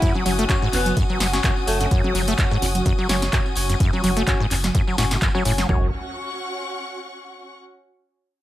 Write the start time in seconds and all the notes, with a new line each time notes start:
Already playing: C#4 E4 F#4 F#5 G#5 D#6
0.02 F#2, kick, closed hi-hat, tambourine
0.14 F#3, tambourine, high conga
0.26 F#1 F#3 C#4 F#4 C#5, open hi-hat, tambourine, low conga
0.38 A3, closed hi-hat, tambourine
0.49 F#2 C#4 F#4 C#5, kick, clap, closed hi-hat, tambourine, high conga
0.62 G#2, tambourine
0.73 F#1 E2 B3, clap, open hi-hat, tambourine, high conga
0.86 closed hi-hat, tambourine, low conga
0.97 F#2, kick, closed hi-hat, tambourine, high conga
1.09 F#3, tambourine
1.20 F#1 F#3, snare, open hi-hat, tambourine
1.33 C#4 F#4 C#5, snare, closed hi-hat, tambourine, high conga
1.44 F#2, kick, clap, closed hi-hat, tambourine
1.57 tambourine, high conga
1.67 F#1 A3 C#4 F#4 C#5, open hi-hat, tambourine
1.80 F#2 A3, closed hi-hat, tambourine, high conga
1.91 F#2, kick, closed hi-hat, tambourine
2.04 F#3, high conga
2.15 F#1 F#3, open hi-hat, tambourine, low conga
2.28 A3, closed hi-hat, tambourine
2.38 F#2, kick, clap, closed hi-hat, tambourine, high conga
2.51 G#2, tambourine
2.62 F#1 E2, open hi-hat, tambourine, high conga
2.75 closed hi-hat, tambourine, low conga
2.85 F#2, kick, closed hi-hat, tambourine, high conga
2.98 F#3, tambourine
3.09 F#1 F#3 C#4 F#4 C#5, snare, open hi-hat, tambourine, low conga
3.22 snare, closed hi-hat, tambourine, high conga
3.33 F#2, kick, clap, closed hi-hat, tambourine
3.46 tambourine, high conga
3.55 F#1 C#4 F#4 C#5, open hi-hat, tambourine
3.70 F#2, closed hi-hat, tambourine, high conga
3.80 F#2, kick, closed hi-hat, tambourine
3.93 F#3, tambourine, high conga
4.04 F#1 F#3 C#4 F#4 C#5, open hi-hat, tambourine, low conga
4.17 A3, closed hi-hat, tambourine
4.27 F#2 C#4 F#4 C#5, kick, clap, closed hi-hat, tambourine, high conga
4.40 G#2, tambourine
4.51 F#1 E2, clap, open hi-hat, tambourine, high conga
4.64 snare, closed hi-hat, tambourine, low conga
4.75 F#2, kick, closed hi-hat, tambourine, high conga
4.87 F#3, tambourine
4.98 F#1 A2 C#4 F#4 C#5, snare, open hi-hat, tambourine
5.11 A2, snare, closed hi-hat, tambourine, high conga
5.21 F#2, kick, clap, closed hi-hat, tambourine
5.35 F#3 C#4 F#4 C#5, tambourine, high conga
5.45 F#1 A2 C#4 F#4 C#5, open hi-hat, tambourine
5.58 F#3, snare, closed hi-hat, tambourine, high conga
5.69 F#1 F#2 C#4 F#4 C#5, kick, floor tom
5.77 F#4
5.84 F#5
5.91 C#6